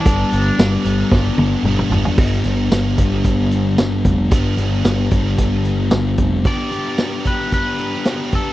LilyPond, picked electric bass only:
\new Staff \with { instrumentName = "Picked electric bass" } { \clef bass \time 4/4 \key g \mixolydian \tempo 4 = 112 g,,8 g,,8 g,,8 g,,8 g,,8 g,,8 g,,8 g,,8 | g,,8 g,,8 g,,8 g,,8 g,,4 g,,8 f,,8 | g,,8 g,,8 g,,8 g,,8 g,,4 g,,8 f,,8 | r1 | }